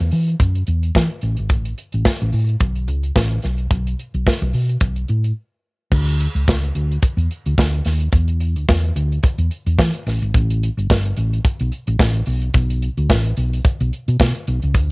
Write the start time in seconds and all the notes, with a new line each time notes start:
0.00 E2, closed hi-hat
0.11 E3, open hi-hat
0.28 closed hi-hat
0.40 F#2, kick, closed hi-hat
0.55 closed hi-hat
0.67 E2, closed hi-hat
0.83 closed hi-hat
0.95 E3, kick, snare
1.10 closed hi-hat
1.21 A1, closed hi-hat
1.37 G#1, closed hi-hat
1.49 A1, kick, closed hi-hat
1.65 closed hi-hat
1.78 closed hi-hat
1.92 A1, closed hi-hat
2.05 kick, snare
2.21 A1, closed hi-hat
2.33 A2, open hi-hat
2.49 closed hi-hat
2.60 B1, kick, closed hi-hat
2.76 closed hi-hat
2.88 C#2, closed hi-hat
3.03 closed hi-hat
3.16 A1, kick, snare
3.31 closed hi-hat
3.43 B1, snare, closed hi-hat
3.58 closed hi-hat
3.71 B1, kick, closed hi-hat
3.87 closed hi-hat
3.99 closed hi-hat
4.14 B1, closed hi-hat
4.27 kick, snare
4.42 B1, closed hi-hat
4.53 B2, open hi-hat
4.69 closed hi-hat
4.80 B1, kick, closed hi-hat
4.96 closed hi-hat
5.08 A2, closed hi-hat
5.24 closed hi-hat
5.92 D2, kick, crash
6.08 closed hi-hat
6.20 closed hi-hat
6.35 C#2, closed hi-hat
6.48 C#2, kick, snare
6.63 closed hi-hat
6.75 D2, closed hi-hat
6.92 closed hi-hat
7.02 kick, closed hi-hat
7.17 E2, closed hi-hat
7.31 closed hi-hat
7.46 D2, closed hi-hat
7.58 D2, kick, snare
7.73 closed hi-hat
7.85 D#2, snare, open hi-hat
8.00 closed hi-hat
8.12 E2, kick, closed hi-hat
8.28 closed hi-hat
8.40 closed hi-hat
8.56 D2, closed hi-hat
8.69 E2, kick, snare
8.84 closed hi-hat
8.96 D2, closed hi-hat
9.12 closed hi-hat
9.23 kick, closed hi-hat
9.38 E2, closed hi-hat
9.51 closed hi-hat
9.66 E2, closed hi-hat
9.79 E3, kick, snare
9.94 closed hi-hat
10.06 A1, snare, open hi-hat
10.22 G#1, closed hi-hat
10.34 A1, kick, closed hi-hat
10.50 closed hi-hat
10.63 closed hi-hat
10.77 G1, closed hi-hat
10.90 G1, kick, snare
11.05 closed hi-hat
11.16 A1, closed hi-hat
11.33 closed hi-hat
11.45 kick, closed hi-hat
11.59 B1, closed hi-hat
11.72 closed hi-hat
11.87 A1, closed hi-hat
11.99 A1, kick, snare
12.14 closed hi-hat
12.26 B1, open hi-hat
12.42 closed hi-hat
12.54 B1, kick, closed hi-hat
12.70 closed hi-hat
12.82 closed hi-hat
12.98 D2, closed hi-hat
13.10 A1, kick, snare
13.25 closed hi-hat
13.37 B1, closed hi-hat
13.53 closed hi-hat
13.64 kick, closed hi-hat
13.80 B1, closed hi-hat
13.93 closed hi-hat
14.08 B2, closed hi-hat
14.20 B2, kick, snare
14.34 closed hi-hat
14.47 B1, closed hi-hat
14.62 C#2, closed hi-hat
14.74 D2, kick, closed hi-hat